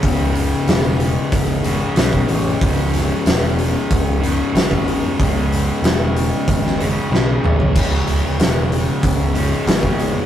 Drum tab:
CC |----------------|----------------|----------------|x---------------|
HH |o-o-o-o-o-o-o-o-|o-o-o-o-o-o-o-o-|o-o-o-o-o-o-----|o-o-o-o-o-o-o-o-|
SD |----o-------o---|--o-o-------o---|----o----o--o---|----o-------o---|
T2 |----------------|----------------|--------------o-|----------------|
FT |----------------|----------------|---------------o|----------------|
BD |o-------o----o--|o-------o----o--|o-------o-------|o-------o----o--|